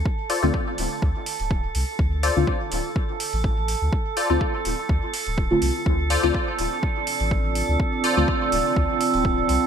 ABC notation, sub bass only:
X:1
M:4/4
L:1/16
Q:"Swing 16ths" 1/4=124
K:Dm
V:1 name="Sub bass" clef=bass
z3 D,, z2 D,,, z D,, z2 D,,,3 C,, z | D,,3 D,, z2 D,,, z4 A,,,4 D,, | z3 D,, z2 D,,, z D,, z2 D,,,3 C,, z | D,,3 D,, z2 D,,, z4 A,,,4 D,, |
z3 D,, z2 D,,, z D,, z2 D,,,3 C,, z |]